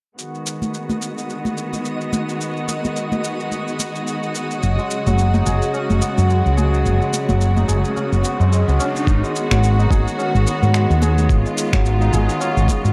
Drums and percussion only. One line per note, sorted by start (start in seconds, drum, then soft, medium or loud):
0.19 shaker soft
0.35 shaker soft
0.46 shaker medium
0.62 high conga medium
0.62 shaker soft
0.74 shaker soft
0.89 high conga medium
0.89 shaker soft
1.02 shaker medium
1.18 shaker soft
1.30 shaker soft
1.45 high conga medium
1.45 shaker soft
1.57 shaker medium
1.73 muted conga soft
1.73 high conga soft
1.73 shaker soft
1.85 shaker soft
2.01 shaker soft
2.13 high conga medium
2.13 shaker medium
2.29 shaker soft
2.41 shaker soft
2.57 shaker soft
2.68 muted conga soft
2.68 shaker medium
2.84 muted conga soft
2.84 high conga medium
2.84 shaker soft
2.96 shaker soft
3.12 high conga medium
3.12 shaker soft
3.24 shaker medium
3.40 shaker soft
3.52 high conga soft
3.52 shaker soft
3.68 shaker soft
3.79 muted conga soft
3.79 shaker medium
3.95 shaker soft
4.07 shaker soft
4.23 shaker soft
4.35 shaker medium
4.51 shaker soft
4.63 shaker soft
4.79 shaker soft
4.91 shaker medium
5.07 high conga medium
5.07 shaker soft
5.18 shaker soft
5.34 high conga medium
5.34 shaker soft
5.46 shaker medium
5.62 shaker soft
5.74 shaker soft
5.90 high conga medium
5.90 shaker soft
6.02 shaker medium
6.17 muted conga soft
6.17 high conga soft
6.17 shaker soft
6.30 shaker soft
6.46 shaker soft
6.58 high conga medium
6.58 shaker medium
6.74 shaker soft
6.86 shaker soft
7.02 shaker soft
7.13 muted conga soft
7.13 shaker medium
7.28 muted conga soft
7.28 high conga medium
7.28 shaker soft
7.41 shaker soft
7.57 high conga medium
7.57 shaker soft
7.69 shaker medium
7.85 shaker soft
7.96 high conga soft
7.96 shaker soft
8.13 shaker soft
8.23 muted conga soft
8.23 shaker medium
8.41 shaker soft
8.53 shaker soft
8.69 shaker soft
8.80 shaker medium
8.95 muted conga soft
8.95 shaker soft
9.07 kick loud
9.07 shaker soft
9.24 shaker soft
9.36 shaker medium
9.51 finger snap medium
9.51 muted conga soft
9.51 shaker soft
9.63 shaker soft
9.79 shaker soft
9.91 kick loud
9.91 high conga soft
9.91 shaker medium
10.08 shaker soft
10.19 shaker soft
10.35 shaker soft
10.47 shaker medium
10.63 high conga soft
10.63 shaker soft
10.74 finger snap medium
10.74 shaker soft
10.91 shaker soft
11.02 muted conga medium
11.02 shaker medium
11.18 high conga medium
11.18 shaker soft
11.29 kick loud
11.29 shaker soft
11.46 shaker soft
11.58 shaker medium
11.73 finger snap medium
11.73 kick loud
11.73 muted conga medium
11.73 shaker soft
11.85 shaker soft
12.01 shaker soft
12.13 shaker medium
12.29 shaker soft
12.41 shaker soft
12.57 shaker soft
12.68 kick medium
12.68 muted conga soft
12.68 high conga soft
12.68 shaker medium
12.85 shaker soft